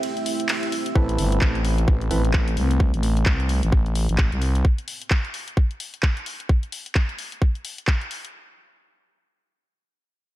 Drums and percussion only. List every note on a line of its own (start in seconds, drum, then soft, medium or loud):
0.03 ride medium
0.17 closed hi-hat soft
0.26 open hi-hat loud
0.40 closed hi-hat medium
0.49 clap loud
0.49 ride medium
0.63 closed hi-hat medium
0.72 open hi-hat medium
0.86 closed hi-hat medium
0.95 kick loud
1.09 closed hi-hat medium
1.19 open hi-hat loud
1.32 closed hi-hat medium
1.41 kick loud
1.41 clap loud
1.55 closed hi-hat soft
1.65 open hi-hat medium
1.78 closed hi-hat medium
1.88 kick loud
2.01 closed hi-hat soft
2.11 open hi-hat loud
2.25 closed hi-hat medium
2.33 kick loud
2.33 clap loud
2.48 closed hi-hat medium
2.57 open hi-hat medium
2.71 closed hi-hat medium
2.80 kick loud
2.94 closed hi-hat medium
3.03 open hi-hat loud
3.17 closed hi-hat medium
3.26 kick loud
3.26 clap loud
3.40 closed hi-hat soft
3.49 open hi-hat medium
3.63 closed hi-hat medium
3.72 kick loud
3.86 closed hi-hat soft
3.95 open hi-hat loud
4.09 closed hi-hat medium
4.18 kick loud
4.18 clap loud
4.32 closed hi-hat medium
4.42 open hi-hat medium
4.55 closed hi-hat medium
4.65 kick loud
4.78 closed hi-hat medium
4.88 open hi-hat loud
5.02 closed hi-hat medium
5.10 kick loud
5.10 clap loud
5.25 closed hi-hat soft
5.34 open hi-hat medium
5.48 closed hi-hat medium
5.57 kick loud
5.71 closed hi-hat soft
5.80 open hi-hat loud
5.94 closed hi-hat medium
6.03 kick loud
6.03 clap loud
6.17 closed hi-hat soft
6.26 open hi-hat medium
6.40 closed hi-hat medium
6.49 kick loud
6.63 closed hi-hat soft
6.72 open hi-hat loud
6.86 closed hi-hat medium
6.95 kick loud
6.95 clap loud
7.09 closed hi-hat soft
7.18 open hi-hat medium
7.32 closed hi-hat medium
7.42 kick loud
7.55 closed hi-hat soft
7.65 open hi-hat loud
7.78 closed hi-hat medium
7.87 kick loud
7.87 clap loud
8.01 closed hi-hat soft
8.11 open hi-hat medium
8.25 closed hi-hat medium